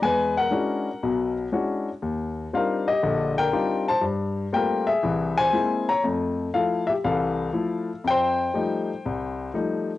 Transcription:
0.02 0.46 E2 medium
0.02 0.46 G#3 medium
0.02 0.35 B4 medium
0.02 0.37 G#5 loud
0.38 1.34 A#4 medium
0.38 1.33 F#5 medium
0.51 0.87 G#3 soft
0.51 0.88 C#4 medium
0.51 0.87 D4 medium
0.51 0.88 E4 soft
0.51 0.88 F#4 medium
1.03 1.47 B1 medium
1.03 1.47 B2 medium
1.52 1.88 G#3 soft
1.52 1.88 C#4 medium
1.52 1.88 D4 soft
1.52 1.88 E4 soft
1.52 1.88 F#4 medium
2.02 2.46 D#2 medium
2.53 2.88 G3 medium
2.53 2.88 C4 soft
2.53 2.89 D4 soft
2.53 2.89 D#4 soft
2.53 2.89 F4 medium
2.53 2.86 A#4 medium
2.53 2.88 F5 medium
2.88 3.34 G4 medium
2.88 3.34 D#5 medium
3.03 3.47 A#1 medium
3.03 3.47 D3 medium
3.38 3.84 A#4 medium
3.38 3.84 G5 loud
3.53 3.88 G3 soft
3.53 3.88 C4 soft
3.53 3.88 D4 medium
3.53 3.89 D#4 soft
3.53 3.88 F4 medium
3.88 4.03 C5 medium
3.88 4.03 A5 medium
4.01 4.46 G2 medium
4.52 4.88 G3 medium
4.52 4.88 A3 soft
4.52 4.88 A#3 soft
4.52 4.88 C4 soft
4.52 4.88 F4 medium
4.52 4.86 A#4 medium
4.52 4.88 G5 medium
4.87 5.34 G#4 medium
4.87 5.38 E5 medium
5.03 5.47 C2 medium
5.03 5.47 E3 medium
5.37 5.84 C5 medium
5.37 5.89 G#5 loud
5.53 5.89 G#3 medium
5.53 5.89 A#3 soft
5.53 5.89 C4 soft
5.53 5.89 E4 medium
5.89 6.04 C#5 medium
5.89 6.03 A#5 medium
6.03 6.47 F2 medium
6.03 6.47 A3 medium
6.54 6.89 F3 medium
6.54 6.89 A3 soft
6.54 6.89 E4 medium
6.54 6.86 A4 medium
6.54 6.85 F5 medium
6.87 6.95 G4 medium
6.87 6.92 E5 medium
7.04 7.48 C2 medium
7.04 7.48 E3 medium
7.04 8.02 A4 medium
7.04 8.01 F5 medium
7.53 7.89 F3 medium
7.53 7.89 A3 medium
7.53 7.89 E4 medium
8.04 8.48 F2 medium
8.04 9.52 G5 loud
8.10 9.54 C5 medium
8.54 8.90 F3 medium
8.54 8.89 G3 soft
8.54 8.90 A3 medium
8.54 8.90 D#4 medium
9.05 9.49 C2 medium
9.54 9.90 F3 medium
9.54 9.90 G3 soft
9.54 9.90 A3 medium
9.54 9.90 D#4 medium

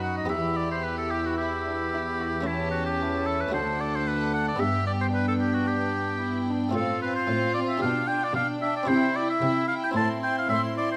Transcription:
0.00 0.26 F#2 soft
0.00 0.30 F#2 soft
0.00 0.24 B3 soft
0.00 0.28 D#4 soft
0.00 0.30 F#4 medium
0.00 0.25 A4 soft
0.00 0.16 F#5 medium
0.00 2.42 B5 soft
0.17 0.29 D#5 medium
0.25 3.49 E2 soft
0.25 2.40 B3 soft
0.25 2.40 G4 soft
0.25 0.58 E5 medium
0.30 3.49 E2 soft
0.30 2.46 E4 soft
0.30 1.36 G4 medium
0.57 0.70 D5 medium
0.71 0.85 C5 medium
0.84 0.97 B4 medium
0.98 1.12 A4 medium
1.11 1.27 G4 medium
1.26 1.37 F#4 soft
1.38 1.64 E4 soft
1.38 2.48 G4 medium
1.65 1.73 D4 soft
1.93 2.01 E4 soft
2.18 2.26 F#4 soft
2.41 3.47 A3 soft
2.41 3.48 C#4 soft
2.41 3.49 E4 soft
2.46 3.52 C#4 soft
2.46 2.71 E4 medium
2.46 2.99 G4 medium
2.46 3.52 A5 soft
2.71 2.85 F#4 medium
2.86 3.28 G4 medium
3.00 3.54 E4 medium
3.27 3.42 A4 medium
3.41 3.53 B4 medium
3.49 4.55 A3 soft
3.49 4.56 D4 soft
3.49 4.56 F#4 soft
3.53 4.60 D2 medium
3.53 4.56 D2 soft
3.53 4.60 D4 soft
3.53 4.58 A4 medium
3.53 3.82 C5 medium
3.53 4.60 F#5 soft
3.81 3.97 D5 medium
3.95 4.09 C5 medium
4.08 4.33 B4 medium
4.34 4.47 F#5 medium
4.48 4.61 D5 medium
4.56 6.71 G2 soft
4.56 6.69 B3 soft
4.56 6.69 D4 soft
4.56 6.70 G4 soft
4.56 5.12 G4 medium
4.56 4.86 E5 medium
4.60 6.71 G2 soft
4.60 6.71 B3 soft
4.60 6.71 G5 soft
4.87 4.93 D5 medium
5.01 5.07 C5 medium
5.13 6.19 D4 medium
5.13 5.27 B4 medium
5.28 5.34 A4 medium
5.40 5.55 G4 medium
5.54 5.69 F#4 medium
5.67 6.47 G4 medium
6.19 6.47 E4 soft
6.48 6.75 D4 medium
6.69 7.76 A3 soft
6.69 7.77 C4 soft
6.69 7.77 F4 soft
6.74 7.19 A2 soft
6.74 7.19 A2 medium
6.74 7.01 C4 soft
6.74 8.35 F4 medium
6.74 7.00 A4 medium
6.74 7.00 F5 medium
7.01 7.28 C4 soft
7.01 7.15 B4 medium
7.01 7.26 F5 medium
7.16 7.54 C5 medium
7.27 7.72 A2 medium
7.27 7.72 A2 soft
7.27 7.55 C4 soft
7.27 7.53 F5 soft
7.54 7.82 C4 soft
7.54 7.61 D5 medium
7.54 7.81 F5 soft
7.69 7.81 E5 medium
7.77 8.25 B2 soft
7.77 8.26 B2 medium
7.77 8.84 D4 soft
7.77 8.84 G4 soft
7.77 8.06 G5 medium
7.82 8.07 D4 soft
7.82 8.09 F5 medium
8.07 8.34 D4 soft
8.07 8.33 G5 soft
8.07 8.26 G5 medium
8.24 8.35 D5 medium
8.34 8.80 B2 medium
8.34 8.79 B2 soft
8.34 8.88 D4 medium
8.34 8.61 D4 soft
8.34 8.48 F5 medium
8.34 8.60 G5 soft
8.61 8.89 D4 soft
8.61 8.75 E5 medium
8.61 8.86 G5 medium
8.76 8.89 D5 medium
8.83 9.90 C4 soft
8.83 9.91 E4 soft
8.83 9.92 G4 soft
8.88 9.33 C3 medium
8.88 9.33 C3 soft
8.88 9.15 E4 medium
8.88 9.94 E4 medium
8.88 9.18 C5 medium
8.88 9.13 G5 medium
9.14 9.42 E4 soft
9.14 9.29 D5 medium
9.14 9.40 G5 medium
9.30 9.68 E5 medium
9.42 9.87 C3 soft
9.42 9.88 C3 medium
9.42 9.69 E4 soft
9.42 9.66 G5 soft
9.67 9.95 E4 soft
9.67 9.75 F5 medium
9.67 9.95 G5 soft
9.84 9.90 G5 medium
9.91 10.97 C4 soft
9.91 10.97 E4 soft
9.91 10.97 C5 soft
9.91 10.21 C6 medium
9.96 10.41 A2 soft
9.96 10.41 A2 medium
9.96 10.97 C4 medium
9.96 10.22 E4 medium
9.96 10.09 A5 medium
10.22 10.50 E4 soft
10.22 10.37 G5 medium
10.22 10.49 C6 medium
10.38 10.49 F5 medium
10.49 10.94 A2 soft
10.49 10.95 A2 medium
10.49 10.77 E4 medium
10.49 10.62 E5 medium
10.49 10.76 C6 medium
10.77 10.97 E4 soft
10.77 10.91 D5 medium
10.77 10.97 C6 soft
10.92 10.97 C5 medium

